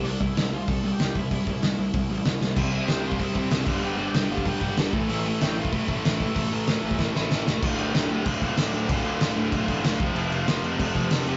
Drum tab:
CC |----------------|----------------|x-------------x-|----------------|
HH |o---o---o---o---|o---o---o---o---|----o---o---o---|----o---o---o---|
SD |----o-------o---|----o-------o-o-|----o-------o---|----o-------o---|
BD |--o-----o-----o-|o-o-----o-------|o------oo-o---o-|-------oo-o---o-|

CC |----------------|----------------|x-x-x-x-x-x-x-x-|x-x-x-x-x-x-x-x-|
HH |o---o---o---o---|o---o-----------|----------------|----------------|
SD |----o-------o---|----o---o-o-o-o-|----o-------o---|----o-------o---|
BD |-------oo-o---o-|o------oo-------|o-------o-o-----|o-------o-o---o-|

CC |x-x-x-x-x-x-x-x-|
HH |----------------|
SD |----o-------o---|
BD |--------o-o-----|